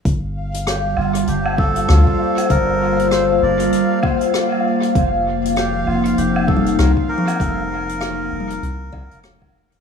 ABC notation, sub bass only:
X:1
M:4/4
L:1/16
Q:"Swing 16ths" 1/4=98
K:Gm
V:1 name="Sub bass" clef=bass
G,,,6 G,,,2 G,,,4 D,, z3 | G,,,6 G,,,2 z8 | F,,,6 F,,,2 F,,,4 C,, z3 | F,,,6 F,,,2 C,,2 C,, F,,,4- F,,, |]